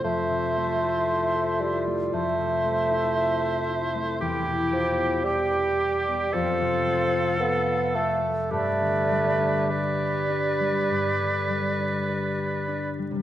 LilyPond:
<<
  \new Staff \with { instrumentName = "Flute" } { \time 4/4 \key a \phrygian \tempo 4 = 56 e''4.~ e''16 r16 e''2 | \key g \mixolydian g''4 g''4 f''4.~ f''16 r16 | d''4 d''2~ d''8 r8 | }
  \new Staff \with { instrumentName = "Oboe" } { \time 4/4 \key a \phrygian c''4.~ c''16 r16 c''2 | \key g \mixolydian g'4 g'4 a'4.~ a'16 r16 | b'4 b'2~ b'8 r8 | }
  \new Staff \with { instrumentName = "Clarinet" } { \time 4/4 \key a \phrygian f'2.~ f'8. r16 | \key g \mixolydian e'4 g'4 f'4 a'4 | g'2.~ g'8 r8 | }
  \new Staff \with { instrumentName = "Harp" } { \time 4/4 \key a \phrygian <f, a a' c''>16 c16 a16 e'16 c''16 a'16 e'16 a16 f,16 c16 a16 e'16 c''16 a'16 e'16 a16 | \key g \mixolydian e,16 b,16 b16 g'16 e''16 b'8 b16 f,16 c16 a16 f'16 c''16 a'16 f'16 a16 | g,16 d16 g16 d'16 b'16 g'16 d'16 g16 g,16 d16 g16 d'16 b'16 g'16 d'16 g16 | }
  \new Staff \with { instrumentName = "Bassoon" } { \time 4/4 \key a \phrygian a4. g8 a2 | \key g \mixolydian r8 f8 g4 c'4 b8 a8 | a4 g2 r4 | }
>>